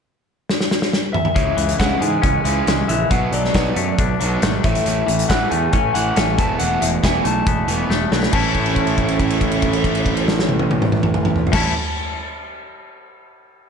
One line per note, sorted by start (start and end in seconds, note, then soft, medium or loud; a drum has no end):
0.49 snare medium
0.61 snare medium
0.71 snare medium
0.82 snare medium
0.93 snare medium
1.13 1.79 E5 medium
1.13 mid tom loud
1.25 mid tom loud
1.36 1.51 C#2 medium
1.36 1.57 C#3 medium
1.36 1.57 E3 medium
1.36 1.57 G#3 medium
1.36 kick loud
1.36 closed hi-hat medium
1.57 1.73 C#2 medium
1.57 1.77 C#3 medium
1.57 1.78 E3 medium
1.57 closed hi-hat medium
1.69 closed hi-hat medium
1.79 1.95 C#2 medium
1.79 2.00 C#3 medium
1.79 2.01 E3 medium
1.79 2.01 G#3 loud
1.79 2.00 F#5 medium
1.79 kick medium
1.79 snare loud
1.79 closed hi-hat medium
2.00 2.16 G#2 medium
2.00 2.22 C#3 medium
2.00 2.22 E3 medium
2.00 2.67 G#3 medium
2.00 2.22 G#5 medium
2.00 closed hi-hat medium
2.22 2.39 C#2 medium
2.22 2.44 C#3 medium
2.22 2.44 E3 medium
2.22 3.10 C#4 medium
2.22 2.85 G#5 medium
2.22 kick loud
2.22 closed hi-hat medium
2.45 2.60 C#2 medium
2.45 2.66 C#3 medium
2.45 2.67 E3 medium
2.45 2.67 G#3 medium
2.45 closed hi-hat medium
2.67 2.82 C#2 medium
2.67 2.87 C#3 medium
2.67 2.87 E3 medium
2.67 3.12 G#3 medium
2.67 snare loud
2.67 closed hi-hat medium
2.88 3.04 A#1 medium
2.88 3.09 C#3 medium
2.88 3.09 E3 medium
2.88 3.09 E5 medium
2.88 closed hi-hat medium
3.11 3.26 B1 medium
3.11 3.32 B2 medium
3.11 3.32 F#3 medium
3.11 3.32 B3 loud
3.11 3.34 F#5 loud
3.11 kick loud
3.11 closed hi-hat medium
3.33 3.48 B1 medium
3.33 3.53 B2 medium
3.33 3.53 F#3 medium
3.33 4.64 D5 medium
3.33 closed hi-hat medium
3.44 snare soft
3.54 3.70 B1 medium
3.54 3.75 B2 medium
3.54 3.76 F#3 medium
3.54 3.76 B3 loud
3.54 kick medium
3.54 snare loud
3.54 closed hi-hat medium
3.76 3.92 F#2 medium
3.76 3.97 B2 medium
3.76 3.97 F#3 medium
3.76 4.42 A3 medium
3.76 closed hi-hat medium
3.98 4.14 B1 loud
3.98 4.19 B2 medium
3.98 4.19 F#3 medium
3.98 4.65 D4 medium
3.98 kick loud
3.98 closed hi-hat medium
4.21 4.36 B1 medium
4.21 4.41 B2 loud
4.21 4.42 F#3 loud
4.21 4.42 B3 loud
4.21 closed hi-hat medium
4.42 4.58 G#1 medium
4.42 4.63 B2 medium
4.42 4.63 F#3 medium
4.42 5.51 A3 medium
4.42 snare loud
4.42 closed hi-hat medium
4.64 4.79 A1 medium
4.64 4.85 A2 medium
4.64 4.85 E3 medium
4.64 4.85 A3 loud
4.64 5.32 E5 loud
4.64 kick loud
4.64 closed hi-hat medium
4.75 closed hi-hat medium
4.86 5.01 A1 loud
4.86 5.07 A2 medium
4.86 5.07 E3 loud
4.86 5.08 A3 medium
4.86 closed hi-hat medium
5.08 5.23 A1 medium
5.08 5.28 A2 medium
5.08 5.28 E3 medium
5.08 closed hi-hat medium
5.19 closed hi-hat medium
5.29 5.45 A1 medium
5.29 5.50 A2 medium
5.29 5.50 E3 loud
5.29 5.51 A3 loud
5.29 5.50 F#5 medium
5.29 kick medium
5.29 snare loud
5.29 closed hi-hat medium
5.51 5.67 E2 medium
5.51 5.72 A2 medium
5.51 5.72 E3 medium
5.51 6.16 A3 medium
5.51 5.72 G#5 medium
5.51 closed hi-hat medium
5.73 5.88 A1 medium
5.73 5.93 A2 medium
5.73 5.93 E3 medium
5.73 6.38 C#4 medium
5.73 5.93 G#5 loud
5.73 kick loud
5.73 closed hi-hat medium
5.94 6.10 A1 medium
5.94 6.16 A2 medium
5.94 6.16 E3 loud
5.94 6.16 A3 loud
5.94 6.15 F#5 loud
5.94 closed hi-hat medium
6.16 6.38 A1 medium
6.16 6.37 A2 medium
6.16 6.37 E3 medium
6.16 6.85 A3 medium
6.16 6.37 G#5 loud
6.16 snare loud
6.16 closed hi-hat medium
6.38 6.54 E1 medium
6.38 6.58 E2 medium
6.38 6.59 E3 medium
6.38 6.59 A3 medium
6.38 6.60 B3 loud
6.38 6.58 A5 loud
6.38 kick loud
6.38 closed hi-hat medium
6.59 6.76 E1 medium
6.59 7.68 E2 medium
6.59 6.81 E3 medium
6.59 6.81 A3 medium
6.59 6.81 B3 loud
6.59 6.82 F#5 loud
6.59 closed hi-hat medium
6.81 6.97 E1 loud
6.81 7.90 B2 medium
6.81 7.01 E3 medium
6.81 7.02 A3 medium
6.81 6.87 E5 loud
6.81 closed hi-hat medium
7.03 7.19 E1 medium
7.03 7.23 E3 medium
7.03 7.24 A3 medium
7.03 7.24 B3 loud
7.03 7.27 G#5 loud
7.03 kick medium
7.03 snare loud
7.03 closed hi-hat medium
7.25 7.40 B1 medium
7.25 7.44 E3 medium
7.25 7.45 A3 medium
7.25 8.09 A5 loud
7.25 closed hi-hat medium
7.47 7.62 E1 medium
7.47 7.66 E3 medium
7.47 7.67 A3 medium
7.47 8.33 B3 medium
7.47 kick loud
7.47 closed hi-hat medium
7.68 7.83 E1 medium
7.68 7.89 E3 medium
7.68 7.89 A3 medium
7.68 7.89 B3 loud
7.68 closed hi-hat medium
7.90 8.05 E1 medium
7.90 8.10 E3 medium
7.90 8.10 A3 medium
7.90 snare medium
8.11 8.27 B1 medium
8.11 8.31 E3 medium
8.11 8.32 A3 medium
8.11 snare medium
8.23 snare medium
8.32 11.44 A1 loud
8.32 11.52 A2 loud
8.32 11.53 E3 medium
8.32 11.54 A3 medium
8.32 11.55 C#4 loud
8.32 11.56 E4 loud
8.32 11.44 A5 medium
8.32 kick loud
8.32 crash loud
8.55 kick medium
8.55 crash soft
8.66 crash soft
8.76 kick medium
8.76 crash soft
8.87 crash soft
8.98 kick medium
8.98 crash soft
9.09 crash soft
9.20 kick medium
9.20 crash medium
9.30 crash medium
9.41 kick medium
9.41 crash medium
9.52 crash medium
9.62 kick medium
9.62 crash medium
9.73 crash medium
9.84 kick medium
9.84 crash medium
9.95 crash medium
10.06 kick medium
10.06 crash medium
10.17 crash medium
10.28 snare medium
10.39 snare medium
10.49 high tom medium
10.59 high tom loud
10.71 high tom loud
10.82 mid tom loud
10.92 mid tom loud
11.03 mid tom loud
11.14 mid tom loud
11.25 mid tom loud
11.36 floor tom loud
11.47 floor tom loud
11.52 11.71 A1 loud
11.52 11.72 A2 medium
11.52 11.73 E3 medium
11.52 11.73 A3 loud
11.52 11.74 C#4 medium
11.52 11.71 A5 medium
11.52 kick loud
11.52 snare loud
11.52 crash loud
11.56 11.74 E4 loud